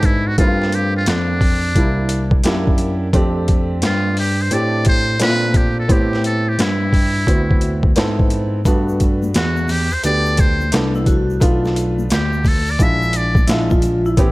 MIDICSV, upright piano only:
0, 0, Header, 1, 2, 480
1, 0, Start_track
1, 0, Tempo, 689655
1, 265, Time_signature, 4, 2, 24, 8
1, 9965, End_track
2, 0, Start_track
2, 0, Title_t, "Upright piano"
2, 0, Program_c, 0, 0
2, 0, Note_on_c, 0, 55, 69
2, 0, Note_on_c, 0, 59, 67
2, 0, Note_on_c, 0, 62, 62
2, 0, Note_on_c, 0, 69, 75
2, 206, Note_off_c, 0, 55, 0
2, 209, Note_off_c, 0, 59, 0
2, 210, Note_off_c, 0, 62, 0
2, 212, Note_off_c, 0, 69, 0
2, 265, Note_on_c, 0, 57, 64
2, 271, Note_on_c, 0, 58, 60
2, 275, Note_on_c, 0, 60, 61
2, 277, Note_on_c, 0, 64, 58
2, 324, Note_on_c, 0, 65, 74
2, 330, Note_off_c, 0, 64, 0
2, 1083, Note_off_c, 0, 57, 0
2, 1086, Note_off_c, 0, 58, 0
2, 1088, Note_off_c, 0, 60, 0
2, 1112, Note_off_c, 0, 65, 0
2, 1224, Note_on_c, 0, 55, 66
2, 1228, Note_on_c, 0, 58, 57
2, 1234, Note_on_c, 0, 62, 60
2, 1238, Note_on_c, 0, 64, 71
2, 1646, Note_off_c, 0, 55, 0
2, 1649, Note_off_c, 0, 58, 0
2, 1651, Note_off_c, 0, 62, 0
2, 1654, Note_off_c, 0, 64, 0
2, 1701, Note_on_c, 0, 67, 84
2, 1705, Note_on_c, 0, 58, 76
2, 1709, Note_on_c, 0, 62, 78
2, 1713, Note_on_c, 0, 64, 92
2, 2125, Note_off_c, 0, 67, 0
2, 2127, Note_off_c, 0, 58, 0
2, 2129, Note_off_c, 0, 62, 0
2, 2131, Note_off_c, 0, 64, 0
2, 2178, Note_on_c, 0, 57, 81
2, 2183, Note_on_c, 0, 60, 79
2, 2188, Note_on_c, 0, 62, 79
2, 2191, Note_on_c, 0, 67, 91
2, 2999, Note_off_c, 0, 57, 0
2, 3002, Note_off_c, 0, 60, 0
2, 3004, Note_off_c, 0, 62, 0
2, 3006, Note_off_c, 0, 67, 0
2, 3135, Note_on_c, 0, 57, 60
2, 3140, Note_on_c, 0, 60, 58
2, 3144, Note_on_c, 0, 62, 55
2, 3147, Note_on_c, 0, 67, 76
2, 3562, Note_off_c, 0, 57, 0
2, 3565, Note_off_c, 0, 60, 0
2, 3567, Note_off_c, 0, 62, 0
2, 3568, Note_off_c, 0, 67, 0
2, 3614, Note_on_c, 0, 57, 69
2, 3615, Note_on_c, 0, 60, 67
2, 3621, Note_on_c, 0, 62, 65
2, 3624, Note_on_c, 0, 64, 66
2, 3669, Note_on_c, 0, 65, 77
2, 3683, Note_off_c, 0, 64, 0
2, 4042, Note_off_c, 0, 57, 0
2, 4042, Note_off_c, 0, 60, 0
2, 4045, Note_off_c, 0, 62, 0
2, 4069, Note_off_c, 0, 65, 0
2, 4092, Note_on_c, 0, 59, 66
2, 4097, Note_on_c, 0, 60, 65
2, 4102, Note_on_c, 0, 64, 59
2, 4106, Note_on_c, 0, 67, 69
2, 4917, Note_off_c, 0, 59, 0
2, 4919, Note_off_c, 0, 60, 0
2, 4921, Note_off_c, 0, 64, 0
2, 4923, Note_off_c, 0, 67, 0
2, 5057, Note_on_c, 0, 59, 64
2, 5061, Note_on_c, 0, 60, 56
2, 5065, Note_on_c, 0, 64, 58
2, 5070, Note_on_c, 0, 66, 67
2, 5483, Note_off_c, 0, 59, 0
2, 5485, Note_off_c, 0, 60, 0
2, 5487, Note_off_c, 0, 64, 0
2, 5489, Note_off_c, 0, 66, 0
2, 5541, Note_on_c, 0, 59, 80
2, 5542, Note_on_c, 0, 60, 78
2, 5547, Note_on_c, 0, 64, 77
2, 5552, Note_on_c, 0, 69, 93
2, 5965, Note_off_c, 0, 59, 0
2, 5966, Note_off_c, 0, 60, 0
2, 5968, Note_off_c, 0, 64, 0
2, 5970, Note_off_c, 0, 69, 0
2, 6022, Note_on_c, 0, 57, 77
2, 6027, Note_on_c, 0, 59, 68
2, 6032, Note_on_c, 0, 62, 70
2, 6034, Note_on_c, 0, 66, 82
2, 6842, Note_off_c, 0, 57, 0
2, 6844, Note_off_c, 0, 59, 0
2, 6846, Note_off_c, 0, 62, 0
2, 6848, Note_off_c, 0, 66, 0
2, 6980, Note_on_c, 0, 57, 61
2, 6982, Note_on_c, 0, 59, 59
2, 6989, Note_on_c, 0, 62, 56
2, 6991, Note_on_c, 0, 67, 69
2, 7404, Note_off_c, 0, 57, 0
2, 7406, Note_off_c, 0, 59, 0
2, 7409, Note_off_c, 0, 62, 0
2, 7410, Note_off_c, 0, 67, 0
2, 7461, Note_on_c, 0, 57, 67
2, 7465, Note_on_c, 0, 59, 66
2, 7470, Note_on_c, 0, 62, 68
2, 7474, Note_on_c, 0, 69, 75
2, 7885, Note_off_c, 0, 57, 0
2, 7887, Note_off_c, 0, 59, 0
2, 7890, Note_off_c, 0, 62, 0
2, 7892, Note_off_c, 0, 69, 0
2, 7935, Note_on_c, 0, 57, 85
2, 7942, Note_on_c, 0, 59, 72
2, 7947, Note_on_c, 0, 62, 70
2, 7949, Note_on_c, 0, 65, 89
2, 8758, Note_off_c, 0, 57, 0
2, 8761, Note_off_c, 0, 59, 0
2, 8764, Note_off_c, 0, 62, 0
2, 8765, Note_off_c, 0, 65, 0
2, 8901, Note_on_c, 0, 56, 66
2, 8906, Note_on_c, 0, 62, 61
2, 8912, Note_on_c, 0, 64, 58
2, 8916, Note_on_c, 0, 65, 71
2, 9325, Note_off_c, 0, 56, 0
2, 9327, Note_off_c, 0, 62, 0
2, 9330, Note_off_c, 0, 64, 0
2, 9333, Note_off_c, 0, 65, 0
2, 9380, Note_on_c, 0, 56, 69
2, 9383, Note_on_c, 0, 62, 64
2, 9388, Note_on_c, 0, 76, 68
2, 9392, Note_on_c, 0, 65, 77
2, 9804, Note_off_c, 0, 56, 0
2, 9806, Note_off_c, 0, 62, 0
2, 9809, Note_off_c, 0, 76, 0
2, 9811, Note_off_c, 0, 65, 0
2, 9863, Note_on_c, 0, 59, 81
2, 9868, Note_on_c, 0, 60, 73
2, 9872, Note_on_c, 0, 64, 73
2, 9876, Note_on_c, 0, 67, 96
2, 9965, Note_off_c, 0, 59, 0
2, 9965, Note_off_c, 0, 60, 0
2, 9965, Note_off_c, 0, 64, 0
2, 9965, Note_off_c, 0, 67, 0
2, 9965, End_track
0, 0, End_of_file